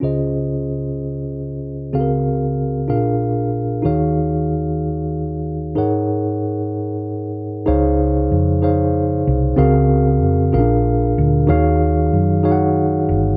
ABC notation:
X:1
M:6/8
L:1/8
Q:3/8=63
K:Db
V:1 name="Tine electric piano"
[DFAce]6 | [CGA=ABf]3 [=DF_ABf]3 | [EGAdf]6 | [EABdg]6 |
[EAcdf]2 z [EAcdf]2 z | [CGABf]2 z [D=DFABf]2 z | [EGAdf]2 z [EGAdfg]2 z |]
V:2 name="Tine electric piano" clef=bass
[D,,D,]6 | [D,,D,]3 [B,,,B,,]3 | [E,,E,]6 | A,,6 |
D,3 z3 | D,3 B,,3 | E,3 z3 |]
V:3 name="Fingered electric bass" clef=bass
z6 | z6 | z6 | z6 |
D,,2 F,,3 C,, | D,,2 F,, B,,,2 =D,, | E,,2 G,,3 =G,,, |]